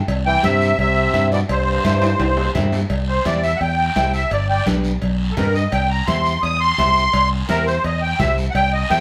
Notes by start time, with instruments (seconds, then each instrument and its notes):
0.08 fingered electric bass C2, cowbell, high conga, long guiro
0.26 trombone E3, accordion G5
0.43 fingered electric bass G2, trombone C3, clean electric guitar E4 G4 C5, accordion E5, cowbell, high conga, short guiro
0.61 short guiro
0.78 fingered electric bass C2, trombone C3, accordion E5, cowbell, high conga, long guiro
1.14 fingered electric bass G2, clean electric guitar E4 G4 C5, cowbell, high conga, short guiro
1.32 trombone B2, accordion D5, short guiro
1.49 fingered electric bass C2, trombone G2, accordion C5, cowbell, high conga, long guiro
1.84 fingered electric bass G2, clean electric guitar E4 G4 B4, cowbell, high conga, short guiro
2.02 high timbale, short guiro
2.20 fingered electric bass C2, cowbell, high conga, high timbale, long guiro
2.37 low timbale
2.55 fingered electric bass G2, clean electric guitar E4 G4 C5, cowbell, high conga, low conga, short guiro
2.72 low timbale, short guiro
2.90 fingered electric bass C2, cowbell, high conga, long guiro
3.08 accordion C5
3.25 fingered electric bass E2, clean electric guitar E4 G4 C5, accordion D5, cowbell, high conga, short guiro
3.43 accordion E5, short guiro
3.56 accordion F#5
3.61 fingered electric bass E2, accordion G5, cowbell, high conga, long guiro
3.96 fingered electric bass C2, clean electric guitar E4 G4 C5, cowbell, high conga, low timbale, short guiro
4.14 accordion E5, short guiro
4.31 fingered electric bass G1, accordion D5, cowbell, high conga, long guiro
4.49 accordion D5 G5
4.66 fingered electric bass B1, clean electric guitar D4 G4 B4, cowbell, high conga, short guiro
4.84 short guiro
5.02 fingered electric bass B1, cowbell, high conga, long guiro
5.32 accordion A4
5.37 fingered electric bass G2, clean electric guitar D4 G4 B4, accordion A#4, cowbell, high conga, low conga, low timbale, short guiro
5.55 accordion D#5, short guiro
5.72 fingered electric bass C2, accordion G5, cowbell, high conga, long guiro
5.90 accordion A#5
6.07 fingered electric bass E2, clean electric guitar E4 G4 C5, accordion C6, cowbell, high conga, short guiro
6.25 short guiro
6.42 fingered electric bass E2, accordion D#6, cowbell, high conga, long guiro
6.61 accordion C6
6.78 fingered electric bass C2, clean electric guitar E4 G4 C5, cowbell, high conga, low timbale, short guiro
6.96 short guiro
7.13 fingered electric bass C2, cowbell, high conga, long guiro
7.49 fingered electric bass E2, clean electric guitar E4 G4 C5, accordion A#4, cowbell, high conga, short guiro
7.66 accordion C5, short guiro
7.84 fingered electric bass E2, accordion D#5, cowbell, high conga, long guiro
8.02 accordion G5
8.19 fingered electric bass C2, clean electric guitar E4 G4 C5, accordion E5, cowbell, high conga, low conga, short guiro
8.38 short guiro
8.51 fingered electric bass C2, accordion F#5
8.55 accordion G5, cowbell, high conga, long guiro
8.73 accordion D#5
8.90 fingered electric bass E2, clean electric guitar E4 G4 C5, accordion G5, cowbell, high conga, short guiro